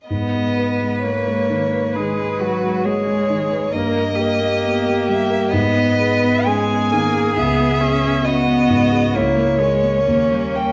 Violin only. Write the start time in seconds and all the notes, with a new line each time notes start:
0.08 D#5
1.04 C#5
1.94 B4
2.84 C#5
3.73 D#5
5.08 E5
5.52 D#5
6.47 G#5
7.36 E5
8.25 D#5
9.16 C#5
10.55 G5